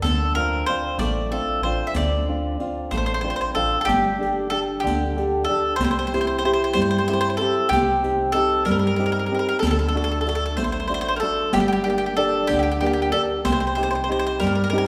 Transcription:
0.02 fm bass D2, nylon-string guitar D3, mandolin A4, riq
0.35 nylon-string guitar C4 D4 F4, mandolin A#4, riq
0.66 nylon-string guitar C4 D4 F4, mandolin C5, riq
0.98 fm bass A1, nylon-string guitar A3, mandolin D5, riq
1.31 nylon-string guitar C4 D4 F4, mandolin A4
1.62 fm bass A1, nylon-string guitar C4 D4 F4, mandolin C5
1.87 mandolin E5
1.94 fm bass D2, nylon-string guitar D3, mandolin D5, riq
2.28 nylon-string guitar C4 D4 F4
2.60 nylon-string guitar C4 D4 F4, riq
2.91 fm bass A1, nylon-string guitar A3, mandolin C5, riq
2.97 mandolin C5
3.06 mandolin C5
3.14 mandolin C5
3.21 nylon-string guitar C4 D4 F4 C5, mandolin C5
3.30 mandolin C5
3.36 mandolin C5
3.41 mandolin C5
3.55 fm bass A1, nylon-string guitar C4 D4 F4 F5, mandolin A4, riq
3.81 mandolin A4
3.85 fm bass G1, nylon-string guitar G3, mandolin G4
3.89 riq
4.19 nylon-string guitar D4 G4 A4, riq
4.50 nylon-string guitar D4 G4 A4, mandolin A4
4.80 nylon-string guitar D3, mandolin G4
4.84 fm bass D2, riq
5.17 nylon-string guitar D4 G4 A4, riq
5.45 mandolin A4
5.49 nylon-string guitar D4 G4 A4
5.76 fm bass C2, mandolin C5
5.81 nylon-string guitar C3, mandolin C5, riq
5.91 mandolin C5
5.99 mandolin C5
6.07 mandolin C5
6.13 nylon-string guitar C4 E4 G4, mandolin C5, riq
6.21 mandolin C5
6.27 mandolin C5
6.39 mandolin C5
6.44 nylon-string guitar C4 E4 G4, mandolin C5
6.53 mandolin C5
6.64 mandolin C5
6.73 fm bass G2, nylon-string guitar G3, mandolin C5, riq
6.82 mandolin C5
6.91 mandolin C5
6.98 mandolin C5
7.08 nylon-string guitar C4 E4 G4, mandolin C5, riq
7.13 mandolin C5
7.21 mandolin C5
7.30 mandolin C5
7.37 nylon-string guitar C4, mandolin A4
7.41 nylon-string guitar E4 G4
7.69 fm bass C2, nylon-string guitar C3, mandolin G4, riq
8.03 nylon-string guitar C4 D#4 G4, riq
8.32 nylon-string guitar C4 D#4 G4, mandolin A4
8.65 fm bass G2, nylon-string guitar G3, mandolin A#4, riq
8.71 mandolin A#4
8.79 mandolin A#4
8.87 mandolin A#4
8.96 nylon-string guitar C4 D#4 G4, mandolin A#4, riq
9.06 mandolin A#4
9.12 mandolin A#4
9.19 mandolin A#4
9.26 mandolin A#4
9.31 nylon-string guitar C4 D#4 G4, mandolin A#4
9.39 mandolin A#4
9.49 mandolin A#4
9.59 nylon-string guitar D3, mandolin A4, riq
9.64 fm bass D2, mandolin A4
9.71 mandolin A4
9.79 mandolin A4
9.88 mandolin A4
9.95 nylon-string guitar A3 D4 F#4, mandolin A4
10.04 mandolin A4
10.12 mandolin A4
10.21 mandolin A4
10.26 nylon-string guitar A3 D4 F#4, mandolin A4, riq
10.35 mandolin A4
10.46 mandolin A4
10.57 fm bass A1, nylon-string guitar A3, mandolin C5, riq
10.64 mandolin C5
10.72 mandolin C5
10.80 mandolin C5
10.88 nylon-string guitar A3 D4 F#4, mandolin C5, riq
10.94 mandolin C5
11.01 mandolin C5
11.08 mandolin C5
11.16 mandolin A4 A#4
11.22 nylon-string guitar A3 D4 F#4
11.53 fm bass G1, nylon-string guitar G3, mandolin G4, riq
11.60 mandolin G4
11.68 mandolin G4
11.73 mandolin G4
11.84 nylon-string guitar A#3 D4 G4, mandolin G4, riq
11.90 mandolin G4
11.98 mandolin G4
12.06 mandolin G4
12.17 nylon-string guitar D4 G4 D5, mandolin A4
12.47 fm bass D2, nylon-string guitar D3, mandolin G4, riq
12.59 mandolin G4
12.71 mandolin G4
12.81 nylon-string guitar A#3 D4 G4, mandolin G4, riq
12.86 mandolin G4
12.93 mandolin G4
13.02 mandolin G4
13.12 nylon-string guitar D4 G4 D5, mandolin A4
13.45 fm bass C2, nylon-string guitar C3, mandolin C5, riq
13.52 mandolin C5
13.60 mandolin C5
13.67 mandolin C5
13.75 nylon-string guitar C4 D#4 G4, mandolin C5, riq
13.83 mandolin C5
13.91 mandolin C5
13.95 mandolin C5
14.04 mandolin C5
14.09 nylon-string guitar C4 D#4 G4, mandolin C5
14.19 mandolin C5
14.27 mandolin C5
14.40 fm bass G2, nylon-string guitar G3, mandolin A#4, riq
14.47 mandolin A#4
14.55 mandolin A#4
14.64 mandolin A#4
14.70 nylon-string guitar C4 D#4 G4, mandolin A#4
14.75 mandolin A#4, riq

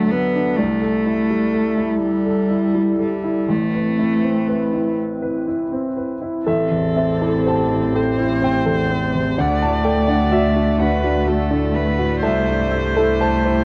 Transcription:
Already playing: grand piano D2 F#3 D4 A4, analog synth pad F#3 D4 A4, cello A3
0.11 cello B3, grand piano A4
0.35 grand piano D4
0.56 grand piano C2, analog synth pad G3 E4 A4, cello A3
0.82 grand piano A4
1.06 grand piano E4
1.30 grand piano G3
1.54 grand piano A4
1.77 grand piano E4
2.01 cello G3
2.26 grand piano A4
2.50 grand piano E4
2.75 grand piano G3
2.99 cello G3, grand piano A4
3.24 grand piano E4
3.48 grand piano A1, cello A3, analog synth pad C4 B4
3.74 grand piano B4
3.99 grand piano E4
4.24 grand piano C4
4.48 grand piano B4
4.73 grand piano E4
5.22 grand piano B4
5.48 grand piano E4
5.72 grand piano C4
5.97 grand piano B4
6.22 grand piano E4
6.46 double bass A1, grand piano A1 E5, analog synth pad A3 G4 C5, cello C4, synth pluck A4, viola A4
6.71 grand piano E2
6.96 grand piano C4, synth pluck E5
7.21 grand piano E4, synth pluck A4
7.47 grand piano G4 A5, synth pluck C5
7.71 grand piano E4, synth pluck C5
7.95 grand piano G4, synth pluck A4, viola C5
8.18 grand piano E4, synth pluck C5
8.42 grand piano C4 G5, synth pluck C5
8.66 grand piano E2, synth pluck A4
8.90 grand piano C4
9.14 grand piano E2, synth pluck C5
9.37 grand piano D2 F#5, double bass D2, cello A3, synth pluck D4, analog synth pad F#4 D5, viola D5
9.62 grand piano A2 A5
9.84 grand piano A3 G5, synth pluck A4
10.08 synth pluck D4, grand piano D4 F#5
10.32 grand piano F#4 E5, synth pluck F#4
10.56 grand piano D4, synth pluck F#4
10.78 synth pluck D4, grand piano F#4 F#5, viola B4
11.03 grand piano D4, synth pluck F#4
11.26 grand piano A3, synth pluck F#4, viola A4
11.51 grand piano A2, synth pluck D4
11.75 grand piano A3, viola B4
11.99 grand piano A2, synth pluck F#4
12.21 double bass C2, grand piano C2 E5, analog synth pad A3 G4 C5, synth pluck A4, viola C5
12.48 grand piano G2
12.71 grand piano A3, synth pluck E5
12.96 grand piano E4, synth pluck A4
13.21 grand piano G4 A5, synth pluck C5
13.45 grand piano E4, synth pluck C5

